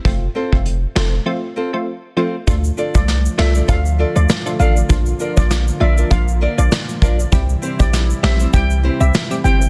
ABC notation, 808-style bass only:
X:1
M:4/4
L:1/16
Q:"Swing 16ths" 1/4=99
K:Dm
V:1 name="808-style bass" clef=bass
F,,,2 z F,,,3 F,,,2 z8 | D,,2 z C,,3 C,,2 D,,3 D,, z2 A,,,2 | B,,,2 z B,,,3 B,,,2 B,,,3 B,,, z2 B,,,2 | C,,2 z B,,,3 B,,,2 C,,3 C,, z2 G,,,2 |]